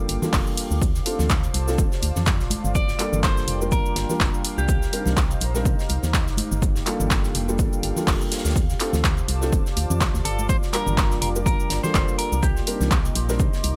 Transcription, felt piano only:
0.00 0.19 G3 medium
0.00 0.19 A#3 medium
0.00 0.19 D4 medium
0.00 0.20 F4 medium
0.00 0.20 A4 medium
0.22 0.80 G3 medium
0.22 0.80 A#3 medium
0.22 0.80 D4 medium
0.22 0.81 F4 medium
0.22 0.81 A4 medium
1.05 1.27 A3 medium
1.05 1.28 C4 medium
1.05 1.28 D4 medium
1.05 1.28 F4 medium
1.05 1.28 A4 loud
1.67 1.80 A3 medium
1.67 1.80 C4 medium
1.67 1.80 D4 medium
1.67 1.80 F4 medium
1.67 1.80 A4 loud
2.98 3.58 G3 medium
2.98 3.58 A#3 medium
2.98 3.58 D4 medium
2.98 3.58 F4 medium
2.98 3.59 A4 loud
3.61 4.06 G3 medium
3.61 4.06 A#3 medium
3.61 4.06 D4 medium
3.61 4.07 F4 medium
3.61 4.07 A#4 medium
4.09 4.67 G3 medium
4.09 4.67 A#3 medium
4.09 4.67 D4 medium
4.09 4.68 F4 medium
4.09 4.68 A#4 medium
4.92 5.15 G3 medium
4.92 5.15 C4 medium
4.92 5.15 D4 medium
4.92 5.15 D#4 medium
4.92 5.15 A#4 loud
5.54 5.67 G3 medium
5.54 5.67 C4 medium
5.54 5.67 D4 medium
5.54 5.67 D#4 medium
5.54 5.67 A#4 loud
6.85 7.45 G3 loud
6.85 7.45 A#3 medium
6.85 7.45 D4 medium
6.85 7.45 F4 medium
6.85 7.46 A4 loud
7.48 7.93 G3 medium
7.48 7.93 A#3 medium
7.48 7.94 D4 medium
7.48 7.94 F4 medium
7.48 7.94 A4 loud
7.96 8.54 G3 medium
7.96 8.54 A#3 medium
7.96 8.55 D4 medium
7.96 8.55 F4 medium
7.96 8.55 A4 medium
8.80 9.02 A3 medium
8.80 9.02 C4 medium
8.80 9.02 D4 medium
8.80 9.02 F4 medium
8.80 9.02 A4 medium
9.41 9.54 A3 medium
9.41 9.54 C4 medium
9.41 9.54 D4 medium
9.41 9.54 F4 medium
9.41 9.54 A4 loud
10.73 11.32 G3 loud
10.73 11.32 A#3 medium
10.73 11.32 D4 medium
10.73 11.33 F4 medium
10.73 11.33 A#4 loud
11.35 11.80 G3 medium
11.35 11.81 A#3 medium
11.35 11.81 D4 medium
11.35 11.81 F4 medium
11.35 11.81 A#4 loud
11.83 12.41 G3 medium
11.83 12.41 A#3 medium
11.83 12.42 D4 medium
11.83 12.42 F4 medium
11.83 12.42 A4 medium
12.67 12.89 G3 medium
12.67 12.89 C4 medium
12.67 12.89 D4 medium
12.67 12.89 D#4 medium
12.67 12.89 A#4 loud
13.29 13.41 G3 loud
13.29 13.41 C4 medium
13.29 13.41 D4 medium
13.29 13.41 D#4 medium
13.29 13.42 A#4 loud

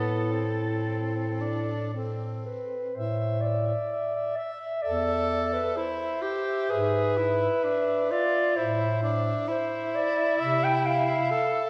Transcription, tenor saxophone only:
0.00 0.33 B3 soft
0.32 1.43 C4 soft
1.41 1.93 D4 soft
1.94 2.92 C4 soft
4.83 5.78 A4 medium
5.77 6.24 E4 soft
6.22 6.72 G4 soft
6.71 7.19 G#4 soft
7.17 7.65 E4 soft
7.64 8.12 D4 soft
8.11 8.58 F4 soft
8.57 9.02 E4 soft
9.03 9.50 D4 soft
9.48 11.32 E4 medium
11.30 11.70 A4 medium

